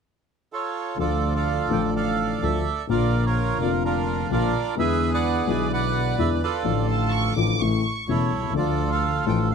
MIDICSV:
0, 0, Header, 1, 5, 480
1, 0, Start_track
1, 0, Key_signature, -1, "minor"
1, 0, Tempo, 474308
1, 993, Time_signature, 4, 2, 24, 8
1, 9663, End_track
2, 0, Start_track
2, 0, Title_t, "Violin section"
2, 0, Program_c, 0, 48
2, 6974, Note_on_c, 0, 81, 66
2, 7197, Note_off_c, 0, 81, 0
2, 7204, Note_on_c, 0, 85, 78
2, 7448, Note_on_c, 0, 86, 73
2, 7450, Note_off_c, 0, 85, 0
2, 7676, Note_off_c, 0, 86, 0
2, 7685, Note_on_c, 0, 85, 71
2, 8052, Note_off_c, 0, 85, 0
2, 9663, End_track
3, 0, Start_track
3, 0, Title_t, "Bandoneon"
3, 0, Program_c, 1, 23
3, 533, Note_on_c, 1, 69, 49
3, 540, Note_on_c, 1, 65, 50
3, 551, Note_on_c, 1, 73, 66
3, 980, Note_off_c, 1, 73, 0
3, 991, Note_off_c, 1, 69, 0
3, 993, Note_off_c, 1, 65, 0
3, 1007, Note_on_c, 1, 69, 49
3, 1008, Note_on_c, 1, 65, 50
3, 1016, Note_on_c, 1, 74, 65
3, 1358, Note_off_c, 1, 69, 0
3, 1358, Note_off_c, 1, 74, 0
3, 1373, Note_on_c, 1, 69, 49
3, 1373, Note_on_c, 1, 74, 49
3, 1388, Note_on_c, 1, 77, 64
3, 1711, Note_off_c, 1, 77, 0
3, 1745, Note_on_c, 1, 79, 64
3, 1848, Note_off_c, 1, 79, 0
3, 1928, Note_off_c, 1, 65, 0
3, 1966, Note_off_c, 1, 69, 0
3, 1968, Note_off_c, 1, 74, 0
3, 1981, Note_on_c, 1, 69, 50
3, 1984, Note_on_c, 1, 74, 54
3, 1988, Note_on_c, 1, 77, 71
3, 2441, Note_off_c, 1, 69, 0
3, 2457, Note_on_c, 1, 69, 51
3, 2462, Note_on_c, 1, 76, 69
3, 2469, Note_off_c, 1, 77, 0
3, 2891, Note_off_c, 1, 74, 0
3, 2895, Note_off_c, 1, 69, 0
3, 2898, Note_off_c, 1, 76, 0
3, 2934, Note_on_c, 1, 70, 53
3, 2938, Note_on_c, 1, 65, 53
3, 2939, Note_on_c, 1, 74, 75
3, 3283, Note_off_c, 1, 65, 0
3, 3287, Note_off_c, 1, 70, 0
3, 3299, Note_off_c, 1, 74, 0
3, 3299, Note_on_c, 1, 65, 54
3, 3299, Note_on_c, 1, 73, 71
3, 3302, Note_on_c, 1, 70, 50
3, 3623, Note_off_c, 1, 73, 0
3, 3660, Note_on_c, 1, 74, 70
3, 3763, Note_off_c, 1, 74, 0
3, 3879, Note_off_c, 1, 70, 0
3, 3881, Note_off_c, 1, 65, 0
3, 3894, Note_on_c, 1, 70, 71
3, 3897, Note_on_c, 1, 65, 54
3, 3898, Note_on_c, 1, 62, 52
3, 4329, Note_off_c, 1, 70, 0
3, 4362, Note_off_c, 1, 65, 0
3, 4373, Note_on_c, 1, 74, 76
3, 4377, Note_on_c, 1, 65, 55
3, 4380, Note_on_c, 1, 70, 57
3, 4799, Note_off_c, 1, 62, 0
3, 4806, Note_off_c, 1, 74, 0
3, 4808, Note_off_c, 1, 65, 0
3, 4809, Note_off_c, 1, 70, 0
3, 4846, Note_on_c, 1, 76, 81
3, 4849, Note_on_c, 1, 71, 62
3, 4851, Note_on_c, 1, 68, 63
3, 5168, Note_off_c, 1, 76, 0
3, 5192, Note_off_c, 1, 71, 0
3, 5200, Note_on_c, 1, 78, 75
3, 5202, Note_on_c, 1, 74, 57
3, 5207, Note_on_c, 1, 71, 57
3, 5557, Note_on_c, 1, 80, 76
3, 5558, Note_off_c, 1, 78, 0
3, 5660, Note_off_c, 1, 80, 0
3, 5747, Note_off_c, 1, 68, 0
3, 5787, Note_off_c, 1, 74, 0
3, 5788, Note_off_c, 1, 71, 0
3, 5800, Note_on_c, 1, 78, 81
3, 5803, Note_on_c, 1, 71, 62
3, 5803, Note_on_c, 1, 74, 62
3, 6232, Note_off_c, 1, 78, 0
3, 6269, Note_on_c, 1, 76, 70
3, 6373, Note_off_c, 1, 76, 0
3, 6497, Note_off_c, 1, 74, 0
3, 6513, Note_on_c, 1, 74, 70
3, 6515, Note_on_c, 1, 65, 52
3, 6515, Note_on_c, 1, 69, 53
3, 6705, Note_off_c, 1, 71, 0
3, 6950, Note_off_c, 1, 74, 0
3, 7425, Note_off_c, 1, 65, 0
3, 7425, Note_off_c, 1, 69, 0
3, 8184, Note_on_c, 1, 73, 72
3, 8195, Note_on_c, 1, 64, 52
3, 8199, Note_on_c, 1, 69, 52
3, 8633, Note_off_c, 1, 73, 0
3, 8639, Note_off_c, 1, 64, 0
3, 8641, Note_off_c, 1, 69, 0
3, 8669, Note_on_c, 1, 74, 74
3, 8681, Note_on_c, 1, 65, 57
3, 8682, Note_on_c, 1, 69, 54
3, 9006, Note_off_c, 1, 74, 0
3, 9019, Note_off_c, 1, 69, 0
3, 9023, Note_on_c, 1, 77, 80
3, 9034, Note_on_c, 1, 69, 51
3, 9363, Note_off_c, 1, 77, 0
3, 9394, Note_on_c, 1, 79, 81
3, 9501, Note_off_c, 1, 79, 0
3, 9599, Note_off_c, 1, 65, 0
3, 9625, Note_on_c, 1, 77, 80
3, 9629, Note_off_c, 1, 69, 0
3, 9663, Note_off_c, 1, 77, 0
3, 9663, End_track
4, 0, Start_track
4, 0, Title_t, "Grand piano"
4, 0, Program_c, 2, 0
4, 977, Note_on_c, 2, 50, 68
4, 986, Note_on_c, 2, 53, 51
4, 997, Note_on_c, 2, 38, 63
4, 999, Note_on_c, 2, 57, 53
4, 1015, Note_on_c, 2, 65, 61
4, 1680, Note_off_c, 2, 53, 0
4, 1683, Note_off_c, 2, 50, 0
4, 1685, Note_off_c, 2, 38, 0
4, 1686, Note_off_c, 2, 57, 0
4, 1695, Note_off_c, 2, 65, 0
4, 1704, Note_on_c, 2, 50, 57
4, 1721, Note_on_c, 2, 53, 55
4, 1723, Note_on_c, 2, 33, 66
4, 1729, Note_on_c, 2, 45, 66
4, 1731, Note_on_c, 2, 57, 51
4, 1743, Note_on_c, 2, 65, 62
4, 2397, Note_off_c, 2, 50, 0
4, 2406, Note_off_c, 2, 53, 0
4, 2407, Note_off_c, 2, 33, 0
4, 2410, Note_off_c, 2, 45, 0
4, 2411, Note_off_c, 2, 57, 0
4, 2417, Note_off_c, 2, 65, 0
4, 2451, Note_on_c, 2, 50, 61
4, 2452, Note_on_c, 2, 38, 64
4, 2455, Note_on_c, 2, 57, 47
4, 2456, Note_on_c, 2, 65, 64
4, 2457, Note_on_c, 2, 53, 52
4, 2648, Note_off_c, 2, 38, 0
4, 2649, Note_off_c, 2, 50, 0
4, 2649, Note_off_c, 2, 57, 0
4, 2650, Note_off_c, 2, 53, 0
4, 2650, Note_off_c, 2, 65, 0
4, 2907, Note_on_c, 2, 50, 58
4, 2924, Note_on_c, 2, 53, 52
4, 2925, Note_on_c, 2, 46, 69
4, 2927, Note_on_c, 2, 34, 71
4, 2932, Note_on_c, 2, 58, 54
4, 2951, Note_on_c, 2, 65, 66
4, 3595, Note_off_c, 2, 50, 0
4, 3604, Note_off_c, 2, 46, 0
4, 3604, Note_off_c, 2, 53, 0
4, 3605, Note_off_c, 2, 34, 0
4, 3608, Note_off_c, 2, 58, 0
4, 3617, Note_off_c, 2, 65, 0
4, 3627, Note_on_c, 2, 50, 61
4, 3640, Note_on_c, 2, 53, 54
4, 3645, Note_on_c, 2, 29, 67
4, 3646, Note_on_c, 2, 41, 70
4, 3654, Note_on_c, 2, 58, 55
4, 3671, Note_on_c, 2, 65, 64
4, 4312, Note_off_c, 2, 50, 0
4, 4319, Note_off_c, 2, 53, 0
4, 4321, Note_off_c, 2, 29, 0
4, 4322, Note_off_c, 2, 41, 0
4, 4326, Note_off_c, 2, 58, 0
4, 4334, Note_off_c, 2, 65, 0
4, 4354, Note_on_c, 2, 50, 58
4, 4359, Note_on_c, 2, 53, 53
4, 4360, Note_on_c, 2, 34, 70
4, 4361, Note_on_c, 2, 46, 65
4, 4362, Note_on_c, 2, 58, 53
4, 4363, Note_on_c, 2, 65, 62
4, 4554, Note_off_c, 2, 50, 0
4, 4556, Note_off_c, 2, 53, 0
4, 4557, Note_off_c, 2, 34, 0
4, 4557, Note_off_c, 2, 46, 0
4, 4558, Note_off_c, 2, 58, 0
4, 4558, Note_off_c, 2, 65, 0
4, 4812, Note_on_c, 2, 50, 63
4, 4824, Note_on_c, 2, 56, 56
4, 4833, Note_on_c, 2, 40, 71
4, 4833, Note_on_c, 2, 59, 54
4, 4834, Note_on_c, 2, 52, 69
4, 4854, Note_on_c, 2, 64, 68
4, 5496, Note_off_c, 2, 50, 0
4, 5502, Note_off_c, 2, 56, 0
4, 5506, Note_off_c, 2, 40, 0
4, 5506, Note_off_c, 2, 59, 0
4, 5507, Note_off_c, 2, 52, 0
4, 5517, Note_off_c, 2, 64, 0
4, 5517, Note_on_c, 2, 50, 61
4, 5533, Note_on_c, 2, 56, 58
4, 5541, Note_on_c, 2, 35, 69
4, 5545, Note_on_c, 2, 47, 69
4, 5545, Note_on_c, 2, 59, 52
4, 5563, Note_on_c, 2, 64, 70
4, 6206, Note_off_c, 2, 50, 0
4, 6214, Note_off_c, 2, 56, 0
4, 6218, Note_off_c, 2, 35, 0
4, 6220, Note_off_c, 2, 47, 0
4, 6220, Note_off_c, 2, 59, 0
4, 6229, Note_off_c, 2, 64, 0
4, 6255, Note_on_c, 2, 56, 49
4, 6256, Note_on_c, 2, 50, 57
4, 6258, Note_on_c, 2, 40, 68
4, 6259, Note_on_c, 2, 52, 68
4, 6261, Note_on_c, 2, 59, 52
4, 6264, Note_on_c, 2, 64, 66
4, 6455, Note_off_c, 2, 50, 0
4, 6455, Note_off_c, 2, 56, 0
4, 6456, Note_off_c, 2, 40, 0
4, 6457, Note_off_c, 2, 52, 0
4, 6458, Note_off_c, 2, 59, 0
4, 6459, Note_off_c, 2, 64, 0
4, 6706, Note_on_c, 2, 50, 61
4, 6724, Note_on_c, 2, 53, 52
4, 6727, Note_on_c, 2, 45, 66
4, 6729, Note_on_c, 2, 33, 67
4, 6733, Note_on_c, 2, 57, 52
4, 6745, Note_on_c, 2, 65, 68
4, 7405, Note_off_c, 2, 50, 0
4, 7414, Note_off_c, 2, 53, 0
4, 7416, Note_off_c, 2, 45, 0
4, 7417, Note_off_c, 2, 33, 0
4, 7419, Note_off_c, 2, 57, 0
4, 7425, Note_off_c, 2, 65, 0
4, 7450, Note_on_c, 2, 50, 61
4, 7453, Note_on_c, 2, 45, 65
4, 7453, Note_on_c, 2, 57, 52
4, 7454, Note_on_c, 2, 53, 53
4, 7458, Note_on_c, 2, 33, 70
4, 7460, Note_on_c, 2, 65, 64
4, 7655, Note_off_c, 2, 50, 0
4, 7656, Note_off_c, 2, 57, 0
4, 7657, Note_off_c, 2, 45, 0
4, 7657, Note_off_c, 2, 53, 0
4, 7659, Note_off_c, 2, 33, 0
4, 7660, Note_off_c, 2, 65, 0
4, 7696, Note_on_c, 2, 49, 53
4, 7701, Note_on_c, 2, 33, 65
4, 7702, Note_on_c, 2, 45, 61
4, 7704, Note_on_c, 2, 64, 59
4, 7706, Note_on_c, 2, 52, 51
4, 7708, Note_on_c, 2, 57, 53
4, 7898, Note_off_c, 2, 49, 0
4, 7901, Note_off_c, 2, 33, 0
4, 7902, Note_off_c, 2, 45, 0
4, 7903, Note_off_c, 2, 52, 0
4, 7903, Note_off_c, 2, 64, 0
4, 7905, Note_off_c, 2, 57, 0
4, 8180, Note_on_c, 2, 28, 61
4, 8180, Note_on_c, 2, 52, 49
4, 8182, Note_on_c, 2, 40, 62
4, 8184, Note_on_c, 2, 49, 55
4, 8186, Note_on_c, 2, 57, 52
4, 8189, Note_on_c, 2, 64, 59
4, 8382, Note_off_c, 2, 52, 0
4, 8383, Note_off_c, 2, 28, 0
4, 8384, Note_off_c, 2, 40, 0
4, 8385, Note_off_c, 2, 49, 0
4, 8386, Note_off_c, 2, 57, 0
4, 8387, Note_off_c, 2, 64, 0
4, 8489, Note_on_c, 2, 35, 39
4, 8538, Note_on_c, 2, 36, 46
4, 8546, Note_off_c, 2, 35, 0
4, 8598, Note_on_c, 2, 37, 52
4, 8601, Note_off_c, 2, 36, 0
4, 8626, Note_on_c, 2, 50, 64
4, 8636, Note_on_c, 2, 53, 52
4, 8643, Note_on_c, 2, 38, 68
4, 8650, Note_on_c, 2, 57, 54
4, 8661, Note_on_c, 2, 65, 65
4, 8662, Note_off_c, 2, 37, 0
4, 9341, Note_off_c, 2, 53, 0
4, 9344, Note_off_c, 2, 38, 0
4, 9344, Note_off_c, 2, 50, 0
4, 9348, Note_off_c, 2, 57, 0
4, 9353, Note_off_c, 2, 65, 0
4, 9362, Note_on_c, 2, 50, 57
4, 9369, Note_on_c, 2, 53, 53
4, 9376, Note_on_c, 2, 45, 67
4, 9377, Note_on_c, 2, 33, 71
4, 9383, Note_on_c, 2, 57, 53
4, 9396, Note_on_c, 2, 52, 65
4, 9663, Note_off_c, 2, 33, 0
4, 9663, Note_off_c, 2, 45, 0
4, 9663, Note_off_c, 2, 50, 0
4, 9663, Note_off_c, 2, 52, 0
4, 9663, Note_off_c, 2, 53, 0
4, 9663, Note_off_c, 2, 57, 0
4, 9663, End_track
5, 0, Start_track
5, 0, Title_t, "Double bass"
5, 0, Program_c, 3, 43
5, 996, Note_on_c, 3, 38, 74
5, 1685, Note_off_c, 3, 38, 0
5, 1725, Note_on_c, 3, 33, 74
5, 2408, Note_off_c, 3, 33, 0
5, 2443, Note_on_c, 3, 38, 73
5, 2643, Note_off_c, 3, 38, 0
5, 2929, Note_on_c, 3, 34, 79
5, 3606, Note_off_c, 3, 34, 0
5, 3642, Note_on_c, 3, 29, 76
5, 4320, Note_off_c, 3, 29, 0
5, 4364, Note_on_c, 3, 34, 77
5, 4559, Note_off_c, 3, 34, 0
5, 4839, Note_on_c, 3, 40, 81
5, 5509, Note_off_c, 3, 40, 0
5, 5555, Note_on_c, 3, 35, 75
5, 6225, Note_off_c, 3, 35, 0
5, 6261, Note_on_c, 3, 40, 71
5, 6458, Note_off_c, 3, 40, 0
5, 6731, Note_on_c, 3, 33, 78
5, 7418, Note_off_c, 3, 33, 0
5, 7454, Note_on_c, 3, 33, 74
5, 7657, Note_off_c, 3, 33, 0
5, 7708, Note_on_c, 3, 33, 75
5, 7905, Note_off_c, 3, 33, 0
5, 8175, Note_on_c, 3, 28, 67
5, 8380, Note_off_c, 3, 28, 0
5, 8422, Note_on_c, 3, 36, 50
5, 8661, Note_off_c, 3, 36, 0
5, 8667, Note_on_c, 3, 38, 77
5, 9356, Note_off_c, 3, 38, 0
5, 9388, Note_on_c, 3, 33, 72
5, 9663, Note_off_c, 3, 33, 0
5, 9663, End_track
0, 0, End_of_file